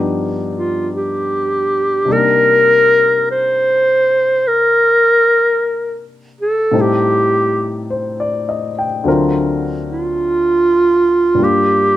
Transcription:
Already playing: G2 F3 B3 D#4 G4 A#4
0.55 F4
0.95 G4
2.05 C3 G3 D4 D#4
2.11 A#3 A#4
3.31 C5
4.47 A#4
6.41 A4
6.71 A2 G3 C4 D#4 A4
6.81 G4
7.90 C5
8.20 D5
8.49 D#5
8.79 G5
9.03 D2 D3 F#3 C4
9.08 F4 A#4
9.91 F4
11.35 G2 G3
11.39 A#3 F4
11.43 G4

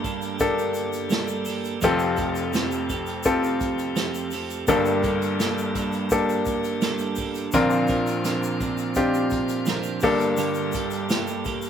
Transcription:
Already playing: G1 G2 G3 A#3 D4 G4 A4
0.04 G3 A#3 D4 A4, kick, closed hi-hat, shaker
0.22 closed hi-hat, shaker
0.39 A#3 D4 G4 A4, kick, closed hi-hat, shaker
0.59 closed hi-hat, shaker
0.74 closed hi-hat, shaker
0.93 closed hi-hat, shaker
1.10 G3 A#3 D4 A4, snare, closed hi-hat, shaker
1.28 shaker
1.45 G3 A#3 D4 A4, snare, open hi-hat, shaker
1.65 closed hi-hat, shaker
1.81 F1 F2 F3 A3 C4 F4 G4 A4, kick, closed hi-hat, shaker
1.99 closed hi-hat, shaker
2.17 C4 G4 A4, kick, closed hi-hat, shaker
2.35 closed hi-hat, shaker
2.53 F3 C4 G4 A4, snare, closed hi-hat, shaker
2.72 closed hi-hat, shaker
2.90 C4 G4 A4, kick, closed hi-hat, shaker
3.06 closed hi-hat, shaker
3.23 C4 F4 G4 A4, kick, closed hi-hat, shaker
3.44 closed hi-hat, shaker
3.60 kick, closed hi-hat, shaker
3.79 closed hi-hat, shaker
3.96 F3 C4 G4 A4, snare, closed hi-hat, shaker
4.14 closed hi-hat, shaker
4.31 C4 G4 A4, snare, open hi-hat, shaker
4.50 closed hi-hat, shaker
4.66 G1 G2 D3 G3 A#3 D4 G4 A4, kick, closed hi-hat, shaker
4.85 shaker
5.03 G3 A#3 D4 A4, kick, closed hi-hat, shaker
5.22 closed hi-hat, shaker
5.40 G3 A#3 D4 A4, snare, closed hi-hat, shaker
5.58 shaker
5.75 G3 A#3 D4 A4, kick, closed hi-hat, shaker
5.93 closed hi-hat, shaker
6.10 A#3 D4 G4 A4, kick, closed hi-hat, shaker
6.29 closed hi-hat, shaker
6.45 kick, closed hi-hat, shaker
6.64 closed hi-hat, shaker
6.82 G3 A#3 D4 A4, snare, closed hi-hat, shaker
6.99 closed hi-hat, shaker
7.16 D4 A4, kick, open hi-hat, shaker
7.20 G3 A#3
7.35 closed hi-hat, shaker
7.52 A#1 A#2 D3 F3 C4 D4 F4 A#4 C5, kick, closed hi-hat, shaker
7.70 closed hi-hat, shaker
7.87 C4 D4 A#4, kick, closed hi-hat, shaker
7.92 F3
8.07 closed hi-hat, shaker
8.24 F3 C4 D4 A#4, snare, closed hi-hat, shaker
8.43 shaker
8.60 F3 C4 D4 A#4, kick, closed hi-hat, shaker
8.78 closed hi-hat, shaker
8.95 C4 D4 F4 G4, kick, closed hi-hat, shaker
9.14 shaker
9.30 kick, closed hi-hat, shaker
9.49 closed hi-hat, shaker
9.66 F3 C4 D4 A#4, snare, closed hi-hat, shaker
9.83 closed hi-hat, shaker
10.00 G1 G2 G3 A#3 D4 G4 A4, kick, snare, open hi-hat, shaker
10.05 G3
10.20 closed hi-hat, shaker
10.37 G2 D3 G3 A#3 G4 A4, closed hi-hat, shaker
10.55 closed hi-hat, shaker
10.72 A#3 G4 A4, kick, closed hi-hat, shaker
10.77 G3
10.91 closed hi-hat, shaker
11.09 G3 A#3 G4 A4, snare, closed hi-hat, shaker
11.27 closed hi-hat, shaker
11.45 G3 A#3 G4 A4, kick, closed hi-hat, shaker
11.62 closed hi-hat, shaker

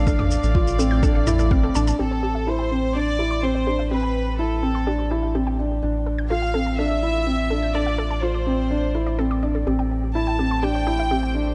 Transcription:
Already playing: A1 A2 A3 D5 F5
0.07 D4 A4, kick, shaker
0.19 D6, mid tom
0.31 shaker
0.43 A1, shaker
0.55 F4, kick
0.67 shaker
0.79 C4 A4, shaker
0.91 G6
1.03 D4 A4, kick, shaker
1.15 F5
1.27 E4 D5, mid tom, shaker
1.39 A4, shaker
1.51 C4 F5, kick
1.63 A4
1.75 A1 D4 A5, shaker
1.87 A5, shaker
1.99 A1 C4 G4 A4
2.11 C5
2.23 G4
2.35 E5
2.47 E4 G4 C5
2.59 G5
2.71 C4
2.95 D4 D5
3.09 C4
3.19 E4 G4
3.31 C6
3.43 C4 G4 C5
3.55 C5
3.67 D4 G4
3.79 E5
3.91 C4 G4 B4
4.03 G5
4.39 E4 A4
4.63 C4 G4
4.75 C6
4.87 D4 G4
4.99 C5
5.11 E4 G4
5.23 E5
5.35 C4 G4
5.47 G5
5.59 D4
5.83 A1 A2 D4
6.06 A4
6.14 F4
6.18 G6
6.30 F4 A4 F5
6.42 F5
6.54 C4 A4
6.66 A5
6.77 D4 A4 D5 E5
6.90 D6
7.03 E4
7.27 C4
7.50 D4 A4
7.62 G6
7.75 D4 A4 D5
7.86 F5
7.98 A4
8.11 A5
8.22 F4 A4 C5
8.34 D6
8.47 C4
8.71 D4
8.95 E4 A4
9.06 D5
9.19 C4 A4
9.31 D6
9.43 D4 D5
9.55 A4
9.67 A1 C4 G4
9.79 G5
9.93 A3
10.15 E4 A5
10.27 C5 G5
10.37 C4 G4
10.51 C6
10.63 D4 G4 G5
10.75 C5
10.87 E4 G4
10.99 E5
11.11 C4 G4
11.23 G5
11.35 D4

